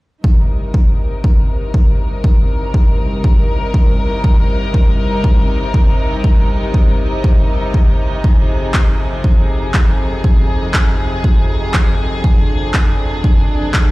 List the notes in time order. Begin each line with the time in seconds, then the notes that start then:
0.24 C2 C3 D#4 A#4, kick
0.74 kick
1.24 kick
1.74 kick
2.24 kick
2.74 kick
3.24 kick
3.74 kick
4.24 kick
4.74 kick
5.24 kick
5.74 kick
6.24 kick
6.74 kick
7.24 kick
7.74 kick
8.24 F2 G#4, kick
8.74 kick, clap
9.24 kick
9.74 kick, clap
10.24 kick
10.74 kick, clap
11.24 kick
11.74 kick, clap
12.24 D4, kick
12.74 kick, clap
13.24 kick
13.74 kick, clap